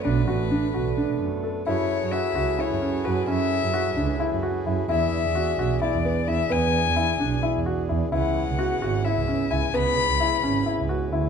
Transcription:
X:1
M:7/8
L:1/16
Q:1/4=130
K:F#m
V:1 name="Violin"
B8- B2 z4 | c4 e4 c4 B2 | e8 z6 | e8 d4 e2 |
g8 z6 | f8 e4 g2 | b8 z6 |]
V:2 name="Grand piano"
D2 F2 D2 F2 D4 A2 | E4 F2 F2 E2 C2 F2 | C4 F2 D2 E2 F2 E2 | E4 F2 F2 E2 B,2 E2 |
B,4 E2 D2 E2 F2 E2 | E4 F2 F2 E2 C2 E2 | B,4 E2 C2 E2 F2 E2 |]
V:3 name="Harmonium"
[D,A,B,]12- [D,A,B,]2 | [F,EGAB]12- [F,EGAB]2- | [F,EGAB]12- [F,EGAB]2 | [E,D]12- [E,D]2- |
[E,D]12- [E,D]2 | [C,B,E]12- [C,B,E]2- | [C,B,E]12- [C,B,E]2 |]
V:4 name="Double bass" clef=bass
B,,,2 A,,,2 z2 B,,,3 B,, F,,2 z2 | F,,2 z F,,3 C,,2 z F,,2 z F,,2 | F,,2 z F,,3 C,,2 z F,,2 z F,,2 | E,,2 z E,,3 B,,,2 z E,,2 z E,,2 |
E,,2 z E,,3 B,,,2 z E,,2 z E,,2 | C,,2 z C,,3 G,,,2 z C,,2 z C,,2 | C,,2 z C,,3 G,,,2 z C,,3 D,,2 |]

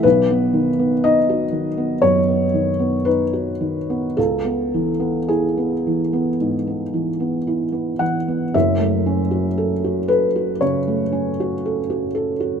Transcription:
X:1
M:4/4
L:1/16
Q:1/4=58
K:F#dor
V:1 name="Felt piano"
B4 d4 c4 B4 | A4 G8- G2 f2 | e6 B2 c8 |]
V:2 name="Felt piano"
B,,, B, D, B, D F D, B, F,, B, D, B, D F D, B, | C,, B, E, B, E B, E, B, G,, B, E, B, E B, E, B, | [F,,,F,,] A, C F A F A F C, A, C F A F A F |]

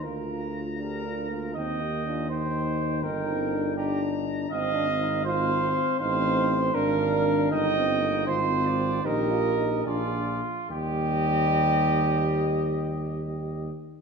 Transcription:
X:1
M:6/8
L:1/16
Q:3/8=79
K:Eb
V:1 name="Trumpet"
b12 | g6 g6 | g6 b6 | f6 f6 |
f6 f6 | g6 c'3 d3 | e6 d4 z2 | e12- |
e12 |]
V:2 name="Flugelhorn"
B6 B6 | e6 c6 | B6 G2 z4 | e6 c6 |
c6 B6 | e6 c6 | B6 F6 | G12- |
G12 |]
V:3 name="French horn"
F6 G2 F2 F2 | E2 G2 F2 E6 | E2 C2 D2 E6 | C6 C6 |
E6 D6 | E6 F6 | G6 A4 z2 | G12- |
G12 |]
V:4 name="Euphonium"
F6 D2 D2 B,2 | C2 B,2 D2 E6 | E6 D6 | C2 D2 E2 F4 z2 |
C6 D6 | E2 C2 B,2 C6 | E2 F2 E2 D3 z3 | G,12- |
G,12 |]
V:5 name="Tuba" clef=bass
D,,12 | E,,12 | G,,,12 | A,,,12 |
=A,,,6 _A,,,6 | G,,,6 A,,,6 | B,,,6 B,,,4 z2 | E,,12- |
E,,12 |]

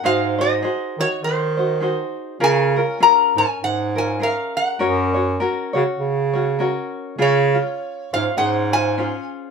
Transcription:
X:1
M:4/4
L:1/16
Q:"Swing" 1/4=101
K:F#
V:1 name="Resonator guitar played with a steel bar"
e2 d4 c2 ^B6 z2 | g4 a2 g2 f2 g2 e2 f2- | f12 z4 | [K:Db] d6 f2 g2 a4 z2 |]
V:2 name="Ukulele"
[DFG^B]2 [DFB]2 [DFGB]2 [DF]4 [DFB]2 [DFGB]4 | [CEGA]2 [CEA]2 [CEGA]2 [CA]4 [CEA]2 [CGA]4 | [CFAc]2 [CFc]2 [CFAc]2 [CFc]4 [CFc]2 [CFAc]4 | [K:Db] [DFA]2 [DF]4 [DFc]2 [DAc]2 [DFc]2 [DFAc]4 |]
V:3 name="Bass clarinet" clef=bass
G,,6 D, z D,8 | C,4 z2 G,, z G,,8 | F,,6 C, z C,8 | [K:Db] D,4 z2 A,,2 A,,8 |]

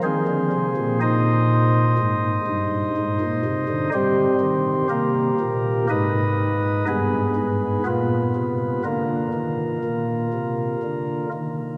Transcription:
X:1
M:4/4
L:1/16
Q:1/4=61
K:Ablyd
V:1 name="Pipe organ"
[CAc]4 [Ece]12 | [CGc]4 [B,GB]4 [E_ce]4 [_CAc]4 | [_CF_c]4 [B,FB]8- [B,FB]2 z2 |]
V:2 name="Pipe organ" clef=bass
E, D, C, B,,4- B,, A,,2 G,,2 A,, B,, C, D, | G,2 E,2 C,2 B,,2 A,,4 G,,2 A,,2 | B,,2 C,2 D,2 E,2 B,,2 C,2 D,2 E,2 |]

